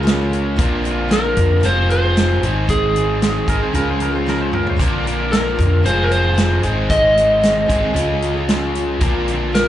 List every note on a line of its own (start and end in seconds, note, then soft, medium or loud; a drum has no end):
0.00 0.54 C#2 loud
0.00 0.57 C#3 medium
0.00 0.31 C#3 medium
0.00 0.28 F3 medium
0.00 0.57 G#3 medium
0.00 0.29 G#3 medium
0.00 0.57 C#4 medium
0.00 0.58 F4 medium
0.00 0.58 G#4 medium
0.00 0.84 A#4 medium
0.05 0.30 F4 medium
0.05 0.31 G#4 loud
0.05 snare loud
0.05 closed hi-hat medium
0.29 0.55 F3 medium
0.29 0.56 G#3 medium
0.29 0.56 F4 medium
0.29 0.57 G#4 medium
0.29 closed hi-hat medium
0.56 1.33 A#1 medium
0.56 0.84 A#2 medium
0.56 0.84 D3 medium
0.56 0.81 F3 medium
0.56 0.83 A#3 medium
0.56 0.83 C4 medium
0.56 0.84 F4 medium
0.56 kick loud
0.56 closed hi-hat medium
0.60 1.63 D4 medium
0.60 1.63 A#4 medium
0.82 1.08 F3 medium
0.82 1.09 A#3 medium
0.82 1.09 C4 medium
0.82 1.10 F4 medium
0.82 closed hi-hat medium
0.87 1.12 F4 medium
1.08 1.36 A#2 medium
1.08 1.36 D3 medium
1.08 1.34 F3 medium
1.08 1.35 A#3 medium
1.08 1.36 C4 medium
1.08 1.37 F4 medium
1.08 1.66 A#4 medium
1.08 snare loud
1.08 closed hi-hat medium
1.35 1.62 F2 medium
1.35 1.49 F3 medium
1.35 1.49 A#3 medium
1.35 1.48 C4 medium
1.35 1.47 F4 medium
1.35 kick medium
1.35 closed hi-hat medium
1.48 1.61 F3 soft
1.48 1.62 A#3 soft
1.48 1.62 C4 soft
1.48 1.61 F4 medium
1.61 2.38 F1 medium
1.61 1.75 F2 medium
1.61 1.75 C3 medium
1.61 1.76 F3 medium
1.61 1.76 G#3 medium
1.61 1.75 F4 medium
1.61 1.73 G#4 medium
1.61 closed hi-hat medium
1.65 2.42 C4 medium
1.65 1.90 C5 loud
1.74 1.88 F3 soft
1.74 1.89 G#3 soft
1.74 1.90 F4 soft
1.74 1.89 G#4 medium
1.89 2.03 F3 medium
1.89 2.03 G#3 medium
1.89 2.02 F4 medium
1.89 2.01 G#4 medium
1.89 2.66 C5 loud
1.89 closed hi-hat medium
2.02 2.16 F3 soft
2.02 2.16 G#3 soft
2.02 2.16 F4 soft
2.02 2.16 G#4 medium
2.16 2.42 F2 medium
2.16 2.43 C3 medium
2.16 2.40 F3 medium
2.16 2.40 G#3 medium
2.16 2.43 F4 medium
2.16 2.44 G#4 medium
2.16 snare loud
2.16 closed hi-hat medium
2.41 3.43 G#1 medium
2.41 3.46 G#2 medium
2.41 3.46 D#3 medium
2.41 2.68 G#3 soft
2.41 2.68 C4 medium
2.41 2.69 D#4 soft
2.41 closed hi-hat medium
2.45 2.69 G#4 medium
2.67 2.94 G#2 medium
2.67 2.95 D#3 medium
2.67 2.93 G#3 medium
2.67 2.95 C4 medium
2.67 2.96 D#4 medium
2.67 4.49 G#4 medium
2.67 2.96 G#4 medium
2.67 kick loud
2.67 closed hi-hat medium
2.95 3.21 G#3 medium
2.95 3.22 C4 medium
2.95 3.22 D#4 medium
2.95 closed hi-hat medium
2.99 3.23 G#4 medium
3.21 3.48 G#2 medium
3.21 3.48 D#3 medium
3.21 3.45 G#3 medium
3.21 3.47 C4 medium
3.21 3.48 D#4 medium
3.21 3.49 G#4 medium
3.21 snare loud
3.21 closed hi-hat medium
3.47 3.60 G#1 medium
3.47 3.73 G#2 medium
3.47 3.73 D#3 medium
3.47 3.60 G#3 medium
3.47 3.61 C4 medium
3.47 3.60 D#4 medium
3.47 3.59 G#4 medium
3.47 3.61 A#4 medium
3.47 kick medium
3.47 closed hi-hat medium
3.61 3.74 G#3 soft
3.61 3.75 C4 soft
3.61 3.74 D#4 medium
3.61 3.74 G#4 soft
3.61 3.74 C5 medium
3.73 4.75 C#2 medium
3.73 3.87 C#3 medium
3.73 3.87 F3 medium
3.73 3.88 G#3 medium
3.73 4.77 C#4 medium
3.73 3.87 F4 medium
3.73 3.86 G#4 medium
3.73 3.87 A#4 medium
3.73 closed hi-hat medium
3.87 4.00 G#3 soft
3.87 4.01 F4 soft
3.87 4.00 G#4 medium
3.87 4.02 C5 medium
4.00 4.13 F3 medium
4.00 4.14 G#3 medium
4.00 4.14 F4 medium
4.00 4.11 G#4 medium
4.00 4.14 A#4 medium
4.00 closed hi-hat medium
4.12 4.27 F4 medium
4.12 4.26 G#4 medium
4.12 4.27 C5 medium
4.17 4.26 G#3 soft
4.26 4.53 C#3 medium
4.26 4.51 F3 medium
4.26 4.52 G#3 medium
4.26 4.52 F4 medium
4.26 4.54 G#4 medium
4.26 4.41 A#4 medium
4.26 snare medium
4.41 4.53 C5 medium
4.52 4.77 F3 medium
4.52 4.78 G#3 medium
4.52 4.78 F4 medium
4.52 4.79 G#4 medium
4.52 4.66 A#4 medium
4.52 mid tom medium
4.67 4.81 C5 medium
4.67 floor tom medium
4.76 5.54 A#1 medium
4.76 5.04 A#2 medium
4.76 5.04 D3 medium
4.76 5.03 F3 medium
4.76 5.04 A#3 medium
4.76 5.05 C4 medium
4.76 5.05 F4 medium
4.76 kick loud
4.76 closed hi-hat medium
4.82 5.84 D4 medium
4.82 5.05 A#4 medium
4.82 5.84 A#4 medium
5.04 5.31 F3 medium
5.04 5.32 A#3 medium
5.04 5.32 C4 medium
5.04 5.33 F4 medium
5.04 5.32 A#4 medium
5.04 closed hi-hat medium
5.31 5.58 A#2 medium
5.31 5.58 D3 medium
5.31 5.55 F3 medium
5.31 5.56 A#3 medium
5.31 5.58 C4 medium
5.31 5.59 F4 medium
5.31 5.86 A#4 medium
5.31 snare loud
5.31 closed hi-hat medium
5.57 5.83 F2 medium
5.57 5.70 F3 medium
5.57 5.70 A#3 medium
5.57 5.69 C4 medium
5.57 kick medium
5.57 closed hi-hat medium
5.61 5.68 F4 medium
5.69 5.82 F3 soft
5.69 5.83 A#3 soft
5.69 5.84 C4 soft
5.69 5.83 F4 soft
5.83 6.59 F1 loud
5.83 5.97 F2 medium
5.83 5.97 C3 medium
5.83 5.97 F3 medium
5.83 5.95 G#3 medium
5.83 6.62 C4 medium
5.83 5.94 F4 medium
5.83 5.94 G#4 medium
5.83 6.05 C5 loud
5.83 closed hi-hat medium
5.95 6.07 F3 soft
5.95 6.08 G#3 soft
5.95 6.09 F4 soft
5.95 6.09 G#4 soft
6.04 6.11 A#4 medium
6.08 6.22 F3 medium
6.08 6.23 G#3 medium
6.08 6.22 F4 medium
6.08 6.20 G#4 medium
6.08 closed hi-hat medium
6.12 6.93 C5 medium
6.22 6.35 F3 soft
6.22 6.35 G#3 soft
6.22 6.36 F4 soft
6.22 6.36 G#4 medium
6.35 6.62 F2 medium
6.35 6.63 C3 medium
6.35 6.61 F3 medium
6.35 6.61 G#3 medium
6.35 6.63 F4 medium
6.35 6.64 G#4 medium
6.35 snare loud
6.35 closed hi-hat medium
6.62 7.65 G#1 medium
6.62 7.67 G#2 medium
6.62 7.68 D#3 medium
6.62 6.89 G#3 soft
6.62 6.89 C4 medium
6.62 6.90 D#4 medium
6.62 6.90 G#4 medium
6.62 closed hi-hat medium
6.89 7.16 G#2 medium
6.89 7.16 D#3 medium
6.89 7.13 G#3 medium
6.89 7.15 C4 medium
6.89 7.15 D#4 medium
6.89 7.17 G#4 medium
6.89 8.71 D#5 medium
6.89 kick loud
6.89 closed hi-hat medium
7.14 7.42 G#3 soft
7.14 7.42 C4 medium
7.14 7.43 D#4 medium
7.14 closed hi-hat medium
7.19 7.43 G#4 medium
7.41 7.68 G#2 medium
7.41 7.69 D#3 medium
7.41 7.65 G#3 medium
7.41 7.66 C4 medium
7.41 7.68 D#4 medium
7.41 7.69 G#4 medium
7.41 snare loud
7.41 closed hi-hat medium
7.66 7.82 G#1 medium
7.66 7.81 G#3 medium
7.66 7.82 C4 medium
7.66 7.82 D#4 medium
7.66 kick medium
7.66 closed hi-hat medium
7.70 7.95 G#2 medium
7.70 7.94 D#3 medium
7.70 7.81 G#4 medium
7.82 7.93 G#3 soft
7.82 7.94 C4 soft
7.82 7.95 D#4 medium
7.82 7.95 G#4 medium
7.94 8.97 C#2 medium
7.94 8.08 C#3 medium
7.94 8.08 F3 medium
7.94 8.08 G#3 medium
7.94 9.00 C#4 medium
7.94 8.08 F4 medium
7.94 8.06 G#4 medium
7.94 closed hi-hat medium
8.07 8.22 G#3 soft
8.07 8.22 F4 soft
8.07 8.21 G#4 medium
8.21 8.35 F3 medium
8.21 8.36 G#3 medium
8.21 8.34 F4 medium
8.21 8.33 G#4 medium
8.21 closed hi-hat medium
8.34 8.48 G#3 medium
8.34 8.49 F4 medium
8.34 8.48 G#4 medium
8.48 8.75 C#3 medium
8.48 8.74 F3 medium
8.48 8.75 G#3 loud
8.48 8.76 F4 medium
8.48 8.76 G#4 medium
8.48 snare loud
8.48 closed hi-hat medium
8.75 9.01 F3 medium
8.75 9.02 G#3 medium
8.75 9.03 F4 medium
8.75 9.03 G#4 medium
8.75 closed hi-hat medium
9.01 9.68 A#1 medium
9.01 9.28 A#2 medium
9.01 9.28 D3 medium
9.01 9.27 F3 medium
9.01 9.27 A#3 medium
9.01 9.29 C4 medium
9.01 9.68 D4 loud
9.01 9.29 F4 medium
9.01 9.68 A#4 medium
9.01 kick loud
9.01 closed hi-hat medium
9.28 9.53 F3 medium
9.28 9.54 A#3 medium
9.28 9.55 C4 medium
9.28 9.54 F4 medium
9.28 closed hi-hat medium
9.53 9.68 A#2 medium
9.53 9.68 D3 medium
9.53 9.68 F3 medium
9.53 9.68 A#3 medium
9.53 9.68 C4 medium
9.53 9.68 F4 medium
9.53 9.68 A#4 medium
9.53 snare loud
9.53 closed hi-hat medium